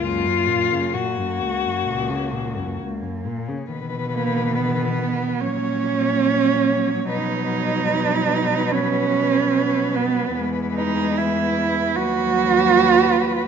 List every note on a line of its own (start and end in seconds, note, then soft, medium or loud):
0.00 0.27 C#2 soft
0.00 0.78 F#2 soft
0.00 3.44 A#3 soft
0.00 0.95 F4 medium
0.25 0.49 F#2 soft
0.48 0.74 A#2 soft
0.72 0.95 C#3 soft
0.93 1.20 A#2 soft
0.93 2.78 F#4 soft
1.19 1.43 F#2 soft
1.42 1.67 C#2 soft
1.66 1.88 F#2 soft
1.86 2.62 C#2 soft
1.86 2.11 A#2 soft
2.10 2.34 C#3 soft
2.32 2.58 A#2 soft
2.56 2.82 F#2 soft
2.80 3.03 C#2 soft
3.02 3.28 F#2 soft
3.26 3.50 A#2 soft
3.48 3.70 C#3 soft
3.71 5.44 B2 soft
3.71 5.38 D#3 soft
3.71 5.38 B4 soft
4.14 4.57 A#3 medium
4.56 5.42 B3 soft
5.41 7.10 A#2 soft
5.41 10.33 F#3 soft
5.41 7.10 C#4 medium
5.41 7.07 C#5 soft
7.09 10.33 B2 soft
7.09 8.73 D#4 medium
7.09 11.93 B4 soft
8.72 9.97 C#4 medium
9.95 10.36 B3 medium
10.37 11.99 E2 soft
10.37 11.94 G#3 soft
10.76 11.19 D#4 medium
11.18 11.97 E4 medium
11.96 13.48 D#2 soft
11.96 13.48 F#3 medium
11.96 13.48 F#4 medium
11.96 13.48 B4 soft